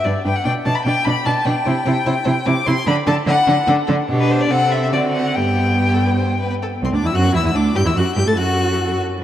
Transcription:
0.05 0.13 G2 medium
0.05 0.13 D4 medium
0.05 0.14 B4 medium
0.05 0.24 D5 medium
0.24 0.33 G2 medium
0.24 0.33 D4 medium
0.24 0.34 B4 medium
0.24 0.37 G5 loud
0.36 0.44 F#5 loud
0.44 0.54 B2 medium
0.44 0.52 D4 medium
0.44 0.53 D5 medium
0.44 0.53 G5 loud
0.65 0.74 B2 medium
0.65 0.73 D4 medium
0.65 0.73 D5 medium
0.65 0.77 A5 loud
0.75 0.84 B5 loud
0.85 0.93 B2 medium
0.85 0.94 D4 medium
0.85 0.94 D5 medium
0.85 1.06 G5 loud
1.05 1.14 B2 medium
1.05 1.14 D4 medium
1.05 1.14 D5 medium
1.05 1.27 B5 loud
1.25 1.34 B2 medium
1.25 1.34 D4 medium
1.25 1.33 D5 medium
1.25 1.47 A5 loud
1.45 1.53 B2 medium
1.45 1.55 D4 medium
1.45 1.53 D5 medium
1.45 2.48 G5 loud
1.65 1.74 C3 medium
1.65 1.74 E4 medium
1.65 1.73 C5 medium
1.85 1.93 C3 loud
1.85 1.95 E4 medium
1.85 1.93 C5 medium
2.06 2.14 C3 medium
2.06 2.14 E4 medium
2.06 2.14 C5 medium
2.24 2.34 C3 medium
2.24 2.35 E4 medium
2.24 2.32 C5 medium
2.45 2.54 C3 medium
2.45 2.55 E4 medium
2.45 2.53 C5 medium
2.45 2.68 D6 loud
2.64 2.75 C3 medium
2.64 2.75 E4 medium
2.64 2.72 C5 medium
2.64 2.87 C6 loud
2.86 2.95 D3 loud
2.86 2.95 D4 medium
2.86 2.94 A4 medium
2.86 2.95 B5 loud
3.06 3.15 D3 medium
3.06 3.14 D4 medium
3.06 3.15 A4 medium
3.06 3.15 A5 loud
3.26 3.35 D3 medium
3.26 3.35 D4 medium
3.26 3.34 A4 medium
3.26 3.68 F#5 loud
3.47 3.55 D3 medium
3.47 3.56 D4 medium
3.47 3.55 A4 medium
3.67 3.75 D3 medium
3.67 3.76 D4 medium
3.67 3.75 A4 medium
3.87 3.97 D3 loud
3.87 3.97 D4 medium
3.87 3.95 A4 medium
4.09 4.48 B2 medium
4.09 4.53 D4 medium
4.09 4.51 G4 medium
4.20 4.32 B4 loud
4.31 4.42 C5 loud
4.41 4.52 D5 loud
4.49 4.94 C3 medium
4.49 4.93 C4 medium
4.49 4.94 A4 loud
4.49 4.73 F#5 loud
4.71 4.82 E5 medium
4.83 4.87 E5 loud
4.92 5.38 D3 medium
4.92 5.39 C4 medium
4.92 5.36 F#4 medium
4.92 5.01 D5 loud
5.13 5.37 F#5 loud
5.36 6.50 G2 medium
5.36 6.51 B3 medium
5.36 5.77 G4 medium
5.36 6.49 G5 loud
5.81 5.95 G4 medium
5.94 6.04 A4 medium
6.05 6.10 B4 medium
6.16 6.38 C5 medium
6.39 6.49 B4 medium
6.49 6.54 B4 medium
6.62 6.67 A4 medium
6.82 6.87 C2 medium
6.82 6.94 C4 medium
6.82 6.96 C4 medium
6.82 6.88 C6 medium
6.93 6.97 D2 medium
6.93 7.06 D4 medium
6.93 7.07 D4 medium
6.93 7.08 D6 medium
7.03 7.08 E2 medium
7.03 7.15 E4 medium
7.03 7.14 E4 medium
7.03 7.16 E6 medium
7.13 7.34 F#2 medium
7.13 7.36 F#4 loud
7.13 7.34 F#4 loud
7.13 7.35 F#6 loud
7.34 7.39 E2 medium
7.34 7.44 E4 loud
7.34 7.45 E4 medium
7.34 7.46 E6 loud
7.44 7.49 E2 medium
7.44 7.49 E4 medium
7.44 7.57 E6 medium
7.54 7.75 D2 medium
7.54 7.62 D4 medium
7.54 7.75 D4 medium
7.54 7.78 D6 medium
7.75 7.85 G2 medium
7.75 7.79 G4 loud
7.75 7.80 G4 loud
7.75 7.88 G6 loud
7.85 7.90 E2 medium
7.85 7.90 E4 medium
7.85 7.94 E4 medium
7.85 7.98 E6 medium
7.95 8.04 F#2 medium
7.95 8.18 F#4 medium
7.95 8.06 F#4 medium
7.95 8.15 F#6 loud
8.15 8.21 G2 medium
8.15 8.26 G4 loud
8.15 8.22 G4 medium
8.15 8.29 G6 loud
8.26 8.36 A2 medium
8.26 8.31 A4 medium
8.26 8.31 A4 loud
8.26 8.39 A6 medium
8.37 8.98 F#2 medium
8.37 8.98 F#4 medium
8.37 8.98 F#4 loud
8.37 8.99 F#6 loud
9.20 9.24 G2 medium
9.20 9.24 D4 medium
9.20 9.24 B4 medium

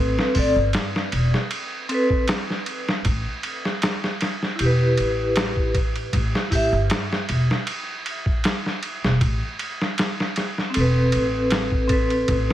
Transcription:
0.00 0.16 A1 medium
0.00 0.31 C4 medium
0.00 0.32 A4 medium
0.00 0.33 B4 medium
0.19 snare medium
0.34 0.54 A1 medium
0.34 0.56 C4 medium
0.34 0.57 A4 medium
0.34 kick medium
0.34 open hi-hat medium
0.39 0.58 D5 medium
0.56 0.72 G1 loud
0.73 snare loud
0.73 ride medium
0.96 snare medium
1.12 1.31 E1 medium
1.12 ride medium
1.34 snare soft
1.51 ride medium
1.89 2.21 C4 medium
1.89 2.22 A4 medium
1.89 ride medium
1.94 2.23 B4 loud
2.10 kick medium
2.28 snare loud
2.28 ride medium
2.50 snare soft
2.66 ride medium
2.89 snare medium
3.05 3.23 A1 loud
3.05 kick medium
3.05 ride medium
3.43 ride medium
3.65 snare soft
3.82 snare loud
3.82 ride medium
4.04 snare soft
4.21 snare soft
4.21 ride medium
4.43 snare soft
4.56 5.68 E4 medium
4.56 ride medium
4.60 4.94 E1 medium
4.60 5.71 G4 medium
4.66 5.74 B4 medium
4.97 6.10 A1 medium
4.97 ride medium
5.36 snare loud
5.36 ride medium
5.57 kick medium
5.74 kick medium
5.74 ride medium
5.96 ride soft
6.13 6.31 A1 medium
6.13 kick loud
6.13 ride medium
6.35 snare medium
6.50 6.70 A1 medium
6.50 6.71 E4 medium
6.50 6.73 G4 medium
6.50 kick medium
6.50 open hi-hat medium
6.55 6.74 E5 medium
6.72 6.88 G1 medium
6.90 snare loud
6.90 ride medium
7.12 snare medium
7.29 7.47 E1 medium
7.29 ride medium
7.51 snare soft
7.67 ride medium
8.06 ride medium
8.26 kick medium
8.44 snare loud
8.44 ride medium
8.66 snare soft
8.83 ride medium
9.04 9.19 E1 medium
9.04 snare medium
9.21 9.39 A1 medium
9.21 kick loud
9.21 ride medium
9.59 ride medium
9.82 snare soft
9.98 snare loud
9.98 ride medium
10.20 snare soft
10.36 snare soft
10.36 ride medium
10.58 snare soft
10.70 11.83 C4 medium
10.74 11.10 E1 medium
10.74 11.86 A4 medium
10.74 ride medium
10.80 11.89 B4 medium
11.12 12.26 A1 medium
11.12 ride medium
11.51 snare loud
11.51 ride medium
11.72 kick medium
11.88 12.53 C4 medium
11.88 12.53 A4 medium
11.88 kick medium
11.88 ride medium
11.93 12.53 B4 medium
12.10 ride soft
12.28 12.47 A1 loud
12.28 kick loud
12.28 ride medium

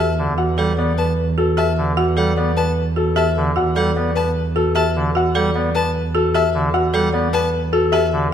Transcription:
0.00 8.33 E2 medium
0.00 0.24 G4 medium
0.00 0.24 E5 medium
0.00 0.13 A5 medium
0.18 0.33 D3 medium
0.38 0.64 F#4 medium
0.38 0.64 F#5 soft
0.58 0.73 G3 medium
0.58 0.84 A4 medium
0.58 0.73 F#5 medium
0.78 0.93 B3 soft
0.78 1.04 D5 medium
0.98 1.24 B4 medium
0.98 1.13 A5 medium
1.38 1.64 F#4 medium
1.38 1.64 A4 medium
1.57 1.83 G4 medium
1.57 1.83 E5 medium
1.57 1.72 A5 medium
1.78 1.93 D3 medium
1.97 2.23 F#4 medium
1.97 2.23 F#5 medium
2.17 2.32 G3 medium
2.17 2.43 A4 medium
2.17 2.32 F#5 medium
2.37 2.52 B3 medium
2.37 2.63 D5 medium
2.57 2.83 B4 medium
2.57 2.72 A5 medium
2.96 3.22 F#4 medium
2.96 3.23 A4 medium
3.16 3.42 G4 medium
3.16 3.42 E5 medium
3.16 3.31 A5 medium
3.37 3.51 D3 medium
3.56 3.82 F#4 medium
3.56 3.82 F#5 medium
3.76 3.91 G3 medium
3.76 4.02 A4 medium
3.76 3.91 F#5 medium
3.96 4.11 B3 medium
3.96 4.22 D5 medium
4.15 4.41 B4 medium
4.15 4.31 A5 medium
4.56 4.82 F#4 medium
4.56 4.81 A4 medium
4.75 5.01 G4 medium
4.75 5.01 E5 medium
4.75 4.90 A5 medium
4.96 5.10 D3 medium
5.15 5.41 F#4 medium
5.15 5.41 F#5 medium
5.35 5.50 G3 medium
5.35 5.61 A4 medium
5.35 5.50 F#5 medium
5.55 5.70 B3 medium
5.55 5.81 D5 medium
5.75 6.01 B4 medium
5.75 5.90 A5 medium
6.15 6.40 F#4 medium
6.15 6.40 A4 medium
6.34 6.60 G4 medium
6.34 6.60 E5 medium
6.34 6.49 A5 medium
6.54 6.69 D3 medium
6.74 7.00 F#4 medium
6.74 7.00 F#5 medium
6.94 7.09 G3 medium
6.94 7.20 A4 medium
6.94 7.09 F#5 medium
7.13 7.28 B3 medium
7.13 7.40 D5 medium
7.33 7.60 B4 medium
7.33 7.48 A5 medium
7.73 7.99 F#4 medium
7.73 7.99 A4 medium
7.92 8.19 G4 medium
7.92 8.19 E5 medium
7.92 8.08 A5 medium
8.13 8.28 D3 medium

